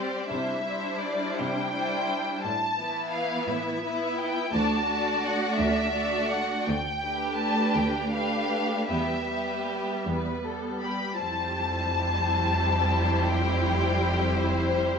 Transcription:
0.00 0.16 A2 soft
0.00 0.28 G3 soft
0.00 0.28 C4 soft
0.00 0.28 G4 soft
0.00 0.28 C5 soft
0.00 0.30 D5 medium
0.29 1.25 C3 soft
0.29 0.64 G3 soft
0.29 0.65 D4 soft
0.29 0.64 E4 soft
0.29 0.64 C5 soft
0.29 1.03 E5 medium
0.65 1.72 G3 soft
0.65 1.72 D4 soft
0.65 1.72 E4 soft
0.65 1.72 C5 soft
1.02 1.39 D5 medium
1.39 2.29 C3 medium
1.39 2.44 G5 medium
1.74 2.42 G3 soft
1.74 2.42 D4 soft
1.74 2.42 E4 soft
1.74 2.42 C5 soft
2.44 3.34 A2 soft
2.44 3.12 A5 medium
2.78 3.81 E3 soft
2.78 3.81 B3 soft
2.78 3.81 E4 soft
2.78 3.81 B4 soft
3.12 3.47 F5 medium
3.47 4.38 A2 medium
3.47 4.18 E5 medium
3.82 4.52 B3 soft
3.82 4.52 E4 soft
3.82 4.52 B4 soft
4.19 4.54 G5 medium
4.53 5.44 D2 medium
4.53 4.87 A3 soft
4.53 4.87 D4 soft
4.53 4.87 F#4 soft
4.53 4.87 D5 soft
4.53 5.24 A5 medium
4.88 5.92 A3 soft
4.88 5.92 D4 soft
4.88 5.92 F#4 soft
4.88 5.91 D5 soft
5.25 5.59 F#5 medium
5.58 6.52 D2 medium
5.58 6.30 E5 medium
5.93 6.65 A3 soft
5.93 6.65 D4 soft
5.93 6.64 F#4 soft
5.93 6.64 D5 soft
6.30 6.66 F#5 medium
6.65 7.61 D2 medium
6.65 7.38 G5 medium
7.02 8.11 A3 soft
7.02 8.11 D4 soft
7.02 8.11 G4 soft
7.02 8.11 B4 soft
7.39 7.75 A5 medium
7.76 8.74 D2 medium
7.76 8.13 G5 medium
8.12 8.88 A3 soft
8.12 8.88 D4 soft
8.12 8.87 G4 soft
8.12 8.87 B4 soft
8.12 8.88 F5 medium
8.88 9.90 E2 medium
8.88 9.27 G3 soft
8.88 9.27 B3 soft
8.88 9.26 G4 soft
8.88 9.26 B4 soft
8.88 10.03 E5 medium
9.27 10.41 G3 soft
9.27 10.41 B3 soft
9.27 9.96 G4 soft
9.27 9.96 B4 soft
10.05 11.04 E2 medium
10.05 10.42 B4 soft
10.43 11.17 G3 soft
10.43 11.17 B3 soft
10.43 10.82 A4 soft
10.82 11.17 G4 soft
10.82 11.16 B5 soft
11.18 14.99 F1 soft
11.18 14.99 F2 soft
11.18 14.99 G3 medium
11.18 14.99 E4 soft
11.18 14.99 G4 soft
11.18 14.99 C5 soft
11.18 13.28 A5 medium
13.32 14.34 G5 medium
14.37 14.99 C5 medium

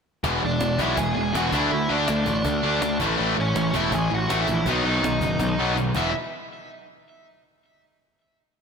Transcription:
0.24 0.39 E1 medium
0.24 0.41 E2 medium
0.24 0.42 B2 medium
0.24 0.42 E3 loud
0.24 0.42 G#3 medium
0.24 0.42 B3 medium
0.24 cajon bass medium
0.42 0.59 E1 medium
0.42 0.59 E2 medium
0.42 0.59 B2 medium
0.42 0.59 E3 medium
0.42 0.60 G#3 medium
0.42 0.79 D4 medium
0.42 0.81 D5 medium
0.61 0.76 E1 medium
0.61 0.77 E2 medium
0.61 0.78 B2 medium
0.61 0.78 E3 medium
0.61 0.78 G#3 medium
0.61 cajon slap loud
0.78 0.94 B1 medium
0.78 0.96 E2 medium
0.78 0.96 B2 medium
0.78 0.97 E3 medium
0.78 0.97 G#3 medium
0.78 0.98 B3 loud
0.78 0.98 E4 medium
0.78 1.00 E5 medium
0.78 cajon bass medium
0.97 1.12 E1 medium
0.97 1.13 E2 medium
0.97 1.13 B2 medium
0.97 1.15 E3 medium
0.97 1.15 G#3 medium
0.97 1.16 G#4 medium
0.97 1.15 G#5 loud
0.97 cajon bass loud
1.15 1.32 E1 medium
1.15 1.32 E2 medium
1.15 1.32 B2 medium
1.15 1.34 E3 medium
1.15 1.34 G#3 medium
1.15 1.34 G#4 medium
1.15 1.37 G#5 medium
1.33 1.50 E1 medium
1.33 1.52 E2 medium
1.33 1.51 B2 loud
1.33 1.52 E3 medium
1.33 1.53 G#3 medium
1.33 1.53 B3 medium
1.33 1.53 F#4 medium
1.33 1.55 F#5 medium
1.33 cajon slap loud
1.52 1.68 D2 loud
1.52 1.70 D3 medium
1.52 1.70 A3 medium
1.52 1.71 D4 loud
1.52 1.89 E4 medium
1.52 1.92 E5 medium
1.52 cajon bass loud
1.72 1.87 D2 medium
1.72 1.87 D3 medium
1.72 1.88 A3 medium
1.89 2.05 D2 medium
1.89 2.06 D3 medium
1.89 2.07 A3 medium
1.89 2.07 D4 medium
1.89 2.27 D5 medium
1.93 2.26 D4 medium
2.08 2.24 D2 loud
2.08 2.24 D3 medium
2.08 2.24 A3 medium
2.08 cajon slap loud
2.26 2.42 A1 medium
2.26 2.43 D3 medium
2.26 2.43 A3 medium
2.26 2.97 D4 medium
2.26 2.97 D5 medium
2.26 cajon bass medium
2.45 2.60 D2 medium
2.45 2.61 D3 medium
2.45 2.62 A3 medium
2.45 cajon bass loud
2.62 2.79 D2 medium
2.62 2.79 D3 medium
2.62 2.80 A3 medium
2.62 2.81 D4 medium
2.81 2.97 D2 medium
2.81 2.98 D3 medium
2.81 2.99 A3 medium
2.81 cajon slap loud
3.00 3.15 A1 medium
3.00 3.17 A2 medium
3.00 3.17 E3 medium
3.00 3.18 A3 loud
3.00 cajon bass medium
3.18 3.34 A1 medium
3.18 3.36 A2 loud
3.18 3.36 E3 medium
3.18 3.36 A3 medium
3.37 3.53 A1 medium
3.37 3.54 A2 medium
3.37 3.54 E3 medium
3.37 3.73 C#5 medium
3.41 3.74 C#4 medium
3.55 3.71 A1 loud
3.55 3.72 A2 medium
3.55 3.72 E3 medium
3.55 cajon slap loud
3.74 3.89 E1 medium
3.74 3.91 A2 medium
3.74 3.91 E3 medium
3.74 3.92 A3 medium
3.74 3.93 E4 medium
3.74 3.94 E5 medium
3.74 cajon bass medium
3.92 4.07 A1 medium
3.92 4.10 A2 medium
3.92 4.10 E3 medium
3.92 4.11 G#4 medium
3.92 4.11 G#5 loud
3.92 cajon bass loud
4.11 4.26 A1 medium
4.11 4.28 A2 medium
4.11 4.28 E3 medium
4.11 4.41 F#5 loud
4.15 4.39 F#4 medium
4.29 4.45 A1 medium
4.29 4.47 A2 medium
4.29 4.47 E3 medium
4.29 4.47 A3 medium
4.29 cajon slap loud
4.42 4.66 E4 medium
4.42 4.69 E5 loud
4.47 4.62 A#1 loud
4.47 4.65 A2 medium
4.47 4.65 E3 medium
4.47 cajon bass medium
4.65 4.80 B1 medium
4.65 4.83 B2 medium
4.65 4.84 D#3 medium
4.65 4.84 F#3 loud
4.65 4.85 B3 medium
4.65 cajon bass medium
4.70 5.75 D#4 medium
4.70 5.75 D#5 medium
4.84 5.00 B1 medium
4.84 5.02 B2 medium
4.84 5.02 D#3 medium
4.84 5.02 F#3 loud
4.84 5.03 B3 loud
5.03 5.17 B1 medium
5.03 5.20 B2 medium
5.03 5.20 D#3 medium
5.03 5.20 F#3 medium
5.03 cajon slap loud
5.21 5.36 F#1 medium
5.21 5.38 B2 medium
5.21 5.38 D#3 medium
5.21 5.39 F#3 medium
5.21 cajon bass medium
5.39 5.54 B1 medium
5.39 5.56 B2 medium
5.39 5.56 D#3 medium
5.39 5.57 F#3 medium
5.39 cajon bass loud
5.57 5.72 B1 medium
5.57 5.75 B2 medium
5.57 5.76 D#3 medium
5.57 5.76 F#3 medium
5.57 5.77 B3 loud
5.75 5.90 B1 medium
5.75 5.93 B2 medium
5.75 5.94 D#3 medium
5.75 5.94 F#3 medium
5.75 cajon slap medium
5.95 6.12 E1 loud
5.95 6.10 E2 loud
5.95 6.11 B2 loud
5.95 6.10 E3 medium
5.95 6.10 G#3 medium
5.95 6.11 B3 loud
5.95 6.11 E4 medium
5.95 6.14 E5 medium
5.95 cajon bass medium

